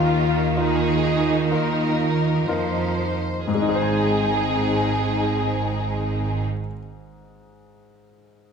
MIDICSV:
0, 0, Header, 1, 10, 480
1, 0, Start_track
1, 0, Key_signature, -4, "major"
1, 0, Tempo, 925926
1, 780, Tempo, 967742
1, 1260, Tempo, 991736
1, 1746, Time_signature, 4, 2, 24, 8
1, 4190, End_track
2, 0, Start_track
2, 0, Title_t, "Flute section"
2, 0, Program_c, 0, 73
2, 0, Note_on_c, 0, 77, 59
2, 291, Note_off_c, 0, 77, 0
2, 292, Note_on_c, 0, 75, 49
2, 1501, Note_off_c, 0, 75, 0
2, 1750, Note_on_c, 0, 80, 54
2, 3185, Note_off_c, 0, 80, 0
2, 4190, End_track
3, 0, Start_track
3, 0, Title_t, "Violin section"
3, 0, Program_c, 1, 48
3, 0, Note_on_c, 1, 65, 43
3, 240, Note_off_c, 1, 65, 0
3, 296, Note_on_c, 1, 68, 54
3, 761, Note_off_c, 1, 68, 0
3, 788, Note_on_c, 1, 70, 44
3, 1262, Note_on_c, 1, 72, 44
3, 1263, Note_off_c, 1, 70, 0
3, 1747, Note_off_c, 1, 72, 0
3, 1747, Note_on_c, 1, 68, 51
3, 3181, Note_off_c, 1, 68, 0
3, 4190, End_track
4, 0, Start_track
4, 0, Title_t, "Harp"
4, 0, Program_c, 2, 46
4, 0, Note_on_c, 2, 51, 41
4, 0, Note_on_c, 2, 63, 32
4, 0, Note_on_c, 2, 65, 40
4, 0, Note_on_c, 2, 75, 34
4, 130, Note_off_c, 2, 65, 0
4, 136, Note_on_c, 2, 65, 30
4, 293, Note_on_c, 2, 70, 38
4, 446, Note_off_c, 2, 75, 0
4, 452, Note_on_c, 2, 75, 32
4, 610, Note_off_c, 2, 70, 0
4, 616, Note_on_c, 2, 70, 35
4, 782, Note_on_c, 2, 58, 35
4, 931, Note_off_c, 2, 63, 0
4, 937, Note_on_c, 2, 63, 30
4, 1089, Note_off_c, 2, 65, 0
4, 1095, Note_on_c, 2, 65, 35
4, 1251, Note_off_c, 2, 70, 0
4, 1257, Note_on_c, 2, 70, 36
4, 1412, Note_off_c, 2, 75, 0
4, 1417, Note_on_c, 2, 75, 30
4, 1581, Note_off_c, 2, 70, 0
4, 1587, Note_on_c, 2, 70, 38
4, 1750, Note_on_c, 2, 44, 36
4, 1763, Note_off_c, 2, 65, 0
4, 1764, Note_off_c, 2, 51, 0
4, 1766, Note_off_c, 2, 58, 0
4, 1766, Note_off_c, 2, 70, 0
4, 1782, Note_on_c, 2, 56, 36
4, 1811, Note_off_c, 2, 63, 0
4, 1817, Note_on_c, 2, 63, 42
4, 1851, Note_on_c, 2, 68, 43
4, 1886, Note_on_c, 2, 72, 39
4, 1920, Note_on_c, 2, 80, 41
4, 3251, Note_off_c, 2, 63, 0
4, 3285, Note_off_c, 2, 68, 0
4, 3305, Note_off_c, 2, 75, 0
4, 3320, Note_off_c, 2, 72, 0
4, 3355, Note_off_c, 2, 80, 0
4, 3450, Note_off_c, 2, 56, 0
4, 3637, Note_off_c, 2, 44, 0
4, 4190, End_track
5, 0, Start_track
5, 0, Title_t, "Grand piano"
5, 0, Program_c, 3, 0
5, 0, Control_c, 3, 64, 127
5, 0, Note_on_c, 3, 39, 46
5, 282, Note_off_c, 3, 39, 0
5, 295, Note_on_c, 3, 63, 27
5, 296, Note_on_c, 3, 65, 30
5, 297, Note_on_c, 3, 70, 35
5, 760, Note_off_c, 3, 63, 0
5, 760, Note_off_c, 3, 65, 0
5, 761, Note_off_c, 3, 70, 0
5, 785, Note_on_c, 3, 63, 31
5, 785, Note_on_c, 3, 65, 29
5, 788, Note_on_c, 3, 70, 36
5, 1242, Note_off_c, 3, 63, 0
5, 1242, Note_off_c, 3, 65, 0
5, 1243, Note_off_c, 3, 70, 0
5, 1265, Note_on_c, 3, 63, 37
5, 1265, Note_on_c, 3, 65, 38
5, 1269, Note_on_c, 3, 70, 36
5, 1729, Note_off_c, 3, 63, 0
5, 1730, Note_off_c, 3, 65, 0
5, 1731, Note_off_c, 3, 70, 0
5, 1746, Note_on_c, 3, 44, 44
5, 1758, Control_c, 3, 64, 0
5, 1780, Note_on_c, 3, 56, 44
5, 1814, Note_on_c, 3, 63, 43
5, 1847, Control_c, 3, 64, 127
5, 1848, Note_on_c, 3, 68, 44
5, 1881, Note_on_c, 3, 72, 42
5, 1913, Note_on_c, 3, 80, 45
5, 3180, Note_off_c, 3, 44, 0
5, 3215, Note_off_c, 3, 56, 0
5, 3248, Note_off_c, 3, 63, 0
5, 3283, Note_off_c, 3, 68, 0
5, 3315, Note_off_c, 3, 72, 0
5, 3348, Note_off_c, 3, 80, 0
5, 4190, End_track
6, 0, Start_track
6, 0, Title_t, "Viola section"
6, 0, Program_c, 4, 48
6, 0, Note_on_c, 4, 65, 60
6, 293, Note_off_c, 4, 65, 0
6, 293, Note_on_c, 4, 63, 48
6, 1502, Note_off_c, 4, 63, 0
6, 1743, Note_on_c, 4, 68, 48
6, 3177, Note_off_c, 4, 68, 0
6, 4190, End_track
7, 0, Start_track
7, 0, Title_t, "French horn section"
7, 0, Program_c, 5, 60
7, 0, Note_on_c, 5, 65, 52
7, 1502, Note_off_c, 5, 65, 0
7, 1749, Note_on_c, 5, 60, 51
7, 1751, Note_on_c, 5, 63, 49
7, 3183, Note_off_c, 5, 60, 0
7, 3186, Note_off_c, 5, 63, 0
7, 4190, End_track
8, 0, Start_track
8, 0, Title_t, "Violin section"
8, 0, Program_c, 6, 48
8, 0, Note_on_c, 6, 58, 44
8, 0, Note_on_c, 6, 63, 48
8, 1596, Note_off_c, 6, 63, 0
8, 1616, Note_off_c, 6, 58, 0
8, 1749, Note_on_c, 6, 60, 48
8, 1751, Note_on_c, 6, 63, 47
8, 3184, Note_off_c, 6, 60, 0
8, 3185, Note_off_c, 6, 63, 0
8, 4190, End_track
9, 0, Start_track
9, 0, Title_t, "Cello section"
9, 0, Program_c, 7, 48
9, 0, Note_on_c, 7, 51, 52
9, 1240, Note_off_c, 7, 51, 0
9, 1264, Note_on_c, 7, 53, 41
9, 1614, Note_off_c, 7, 53, 0
9, 1753, Note_on_c, 7, 44, 55
9, 3187, Note_off_c, 7, 44, 0
9, 4190, End_track
10, 0, Start_track
10, 0, Title_t, "Double bass section"
10, 0, Program_c, 8, 48
10, 0, Note_on_c, 8, 39, 47
10, 1240, Note_off_c, 8, 39, 0
10, 1261, Note_on_c, 8, 41, 41
10, 1613, Note_off_c, 8, 41, 0
10, 1746, Note_on_c, 8, 32, 51
10, 3180, Note_off_c, 8, 32, 0
10, 4190, End_track
0, 0, End_of_file